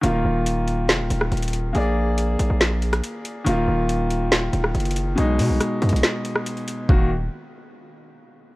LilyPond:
<<
  \new Staff \with { instrumentName = "Grand piano" } { \time 4/4 \key ees \minor \tempo 4 = 140 <ees bes f'>1 | <bes aes' d''>1 | <ees bes f'>1 | <b, gis dis'>1 |
<ees bes ges'>8 r2. r8 | }
  \new Staff \with { instrumentName = "808-style bass" } { \clef bass \time 4/4 \key ees \minor ees,,8 ees,,4. f,,16 ees,,16 ees,,8 ees,,4 | bes,,4. bes,,16 bes,,4~ bes,,16 r4 | ees,,8 ees,,2 ees,,8 ges,,4 | b,,8 b,16 b,,16 r8 fis,16 b,,16 r2 |
ees,,4 r2. | }
  \new DrumStaff \with { instrumentName = "Drums" } \drummode { \time 4/4 hh4 hh8 hh8 <hh sn>8 hh16 ss16 hh32 hh32 hh32 hh32 hh8 | hh4 hh8 hh8 <hh sn>8 hh16 <hh ss>16 hh8 hh8 | hh4 hh8 hh8 <hh sn>8 hh16 ss16 hh32 hh32 hh32 hh32 hh8 | hh8 hho8 \tuplet 3/2 { <hh ss>16 r16 r16 hh16 hh16 hh16 } <hh sn>8 hh16 ss16 hh16 hh16 hh8 |
bd4 r4 r4 r4 | }
>>